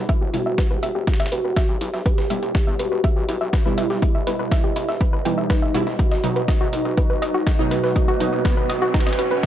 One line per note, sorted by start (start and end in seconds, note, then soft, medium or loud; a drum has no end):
0.00 0.31 B2 loud
0.00 0.31 G3 medium
0.00 0.31 E4 loud
0.00 1.22 F#4 loud
0.00 5.99 G4 medium
0.00 5.99 B4 medium
0.09 0.18 E5 loud
0.09 kick loud
0.09 closed hi-hat medium
0.21 0.29 E1 medium
0.21 0.27 G4 medium
0.33 0.41 E1 loud
0.33 1.66 B2 medium
0.33 1.66 G3 medium
0.33 1.66 E4 medium
0.33 0.43 E4 medium
0.33 closed hi-hat medium
0.33 open hi-hat loud
0.46 0.54 E1 medium
0.46 0.52 E5 medium
0.58 0.68 B4 medium
0.58 kick loud
0.58 snare loud
0.58 closed hi-hat medium
0.71 0.78 E1 medium
0.71 0.82 B4 medium
0.83 0.91 E1 loud
0.83 0.92 E5 loud
0.83 closed hi-hat medium
0.83 open hi-hat loud
0.95 1.03 E1 medium
0.95 1.01 G4 medium
1.07 1.17 E4 medium
1.07 kick loud
1.07 snare medium
1.07 closed hi-hat medium
1.14 snare medium
1.14 closed hi-hat medium
1.20 1.27 E1 medium
1.20 1.25 E5 medium
1.20 snare medium
1.20 closed hi-hat medium
1.26 snare medium
1.26 closed hi-hat medium
1.32 1.40 E1 loud
1.32 1.96 F#4 loud
1.32 1.41 B4 medium
1.32 closed hi-hat medium
1.32 open hi-hat loud
1.44 1.52 E1 medium
1.44 1.56 B4 medium
1.56 1.66 E5 loud
1.56 kick loud
1.56 snare loud
1.56 closed hi-hat medium
1.69 1.77 B1 medium
1.69 1.75 G4 medium
1.77 9.46 D#5 medium
1.81 1.89 B1 loud
1.81 1.91 E4 medium
1.81 closed hi-hat medium
1.81 open hi-hat loud
1.94 2.01 B1 medium
1.94 1.99 E5 medium
1.94 snare medium
2.06 2.70 G4 loud
2.06 2.15 B4 medium
2.06 kick loud
2.06 closed hi-hat medium
2.18 2.26 E1 medium
2.18 2.30 B4 medium
2.18 snare medium
2.30 2.38 E1 medium
2.30 3.63 B2 medium
2.30 3.63 G3 medium
2.30 3.63 E4 medium
2.30 2.40 E5 loud
2.30 closed hi-hat medium
2.30 open hi-hat loud
2.43 2.50 E1 medium
2.43 2.48 G4 medium
2.43 closed hi-hat soft
2.55 2.64 E4 medium
2.55 kick loud
2.55 snare loud
2.55 closed hi-hat medium
2.67 2.75 E2 medium
2.67 2.73 E5 medium
2.79 2.87 E1 medium
2.79 3.68 F#4 loud
2.79 2.89 B4 medium
2.79 closed hi-hat medium
2.79 open hi-hat loud
2.92 3.00 E1 medium
2.92 3.03 B4 medium
3.04 3.13 E5 loud
3.04 kick loud
3.04 closed hi-hat medium
3.16 3.24 B1 medium
3.16 3.22 G4 medium
3.29 3.36 B1 loud
3.29 3.38 E4 medium
3.29 closed hi-hat medium
3.29 open hi-hat loud
3.41 3.49 B1 medium
3.41 3.47 E5 medium
3.53 3.63 B4 medium
3.53 kick loud
3.53 snare loud
3.53 closed hi-hat medium
3.66 3.73 B1 medium
3.66 4.24 B2 loud
3.66 4.24 G3 medium
3.66 4.24 E4 loud
3.66 3.77 B4 medium
3.78 3.86 B1 loud
3.78 5.16 E4 loud
3.78 3.87 E5 loud
3.78 closed hi-hat medium
3.78 open hi-hat loud
3.90 3.98 B1 medium
3.90 3.96 G4 medium
3.90 snare soft
4.02 4.12 E4 medium
4.02 kick loud
4.02 closed hi-hat medium
4.15 4.23 E1 medium
4.15 4.20 E5 medium
4.27 4.35 E1 loud
4.27 5.23 B2 medium
4.27 5.23 G3 medium
4.27 5.23 E4 medium
4.27 4.36 B4 medium
4.27 closed hi-hat medium
4.27 open hi-hat loud
4.39 4.47 E1 medium
4.39 4.51 B4 medium
4.52 4.61 E5 loud
4.52 kick loud
4.52 snare loud
4.52 closed hi-hat medium
4.64 4.72 E1 medium
4.64 4.70 G4 medium
4.76 4.84 E1 loud
4.76 4.86 E4 medium
4.76 closed hi-hat medium
4.76 open hi-hat loud
4.89 4.96 E1 medium
4.89 4.94 E5 medium
4.89 snare soft
5.01 5.10 B4 medium
5.01 kick loud
5.01 closed hi-hat medium
5.13 5.21 E1 medium
5.13 5.25 B4 medium
5.25 5.33 E1 loud
5.25 5.72 B2 medium
5.25 5.72 E3 loud
5.25 5.72 G3 medium
5.25 5.89 D#4 loud
5.25 5.37 G5 medium
5.25 closed hi-hat medium
5.25 open hi-hat loud
5.38 5.45 E1 medium
5.38 5.43 E5 medium
5.50 5.62 B4 loud
5.50 kick loud
5.50 snare loud
5.50 closed hi-hat medium
5.62 5.70 E1 medium
5.62 5.72 E5 medium
5.74 5.82 E1 loud
5.74 5.86 B2 loud
5.74 5.86 G3 medium
5.74 5.86 E4 loud
5.74 5.84 F#4 medium
5.74 closed hi-hat medium
5.74 open hi-hat loud
5.87 5.95 E1 medium
5.87 5.96 E4 medium
5.87 snare soft
5.99 6.09 D#4 medium
5.99 6.63 F#4 loud
5.99 9.46 F#4 medium
5.99 kick loud
5.99 closed hi-hat medium
5.99 riser medium
6.11 6.19 E1 medium
6.11 9.46 B4 medium
6.11 6.17 D#5 medium
6.11 snare medium
6.24 6.32 E1 loud
6.24 7.56 B2 medium
6.24 7.56 F#3 medium
6.24 7.56 D#4 medium
6.24 6.33 B4 medium
6.24 closed hi-hat medium
6.24 open hi-hat loud
6.24 mid tom medium
6.36 6.44 E1 medium
6.36 6.48 B4 medium
6.36 closed hi-hat soft
6.48 6.58 D#5 loud
6.48 kick loud
6.48 snare loud
6.48 closed hi-hat medium
6.61 6.68 E2 medium
6.61 6.72 F#4 loud
6.73 6.81 E1 loud
6.73 6.82 D#4 medium
6.73 7.62 D#4 loud
6.73 closed hi-hat medium
6.73 open hi-hat loud
6.85 6.93 E1 medium
6.85 6.91 D#5 medium
6.85 mid tom medium
6.97 7.07 B4 medium
6.97 kick loud
6.97 closed hi-hat medium
7.10 7.18 E1 medium
7.10 7.21 B4 medium
7.22 7.30 E1 loud
7.22 7.31 D#5 loud
7.22 closed hi-hat medium
7.22 open hi-hat loud
7.34 7.42 E1 medium
7.34 7.46 F#4 loud
7.47 7.56 D#4 medium
7.47 kick loud
7.47 snare loud
7.47 closed hi-hat medium
7.47 mid tom medium
7.59 7.67 B1 medium
7.59 8.18 B2 loud
7.59 8.18 F#3 medium
7.59 8.18 D#4 loud
7.59 7.65 D#5 medium
7.71 7.79 B1 loud
7.71 9.09 F#4 loud
7.71 7.81 B4 medium
7.71 closed hi-hat medium
7.71 open hi-hat loud
7.84 7.91 B1 medium
7.84 7.95 B4 medium
7.84 snare soft
7.96 8.05 D#5 loud
7.96 kick loud
7.96 closed hi-hat medium
8.08 8.16 E1 medium
8.08 8.20 F#4 loud
8.08 mid tom medium
8.20 8.28 E1 loud
8.20 9.46 B2 medium
8.20 9.46 F#3 medium
8.20 8.30 D#4 medium
8.20 9.46 D#4 medium
8.20 closed hi-hat medium
8.20 open hi-hat loud
8.33 8.41 E1 medium
8.33 8.38 D#5 medium
8.45 8.54 B4 medium
8.45 kick loud
8.45 snare loud
8.45 closed hi-hat medium
8.57 8.65 E1 medium
8.57 8.69 B4 medium
8.69 8.77 E1 loud
8.69 8.79 D#5 loud
8.69 closed hi-hat medium
8.69 open hi-hat loud
8.69 mid tom medium
8.82 8.90 E1 medium
8.82 8.94 F#4 loud
8.94 9.04 D#4 medium
8.94 kick loud
8.94 snare medium
8.94 closed hi-hat medium
9.00 snare medium
9.00 closed hi-hat medium
9.07 9.14 E1 medium
9.07 9.12 D#5 medium
9.07 snare medium
9.07 closed hi-hat medium
9.13 snare medium
9.13 closed hi-hat medium
9.19 9.27 E1 loud
9.19 9.46 F#4 loud
9.19 9.28 B4 medium
9.19 closed hi-hat medium
9.19 open hi-hat loud
9.31 9.39 E1 medium
9.31 9.43 B4 medium
9.31 mid tom medium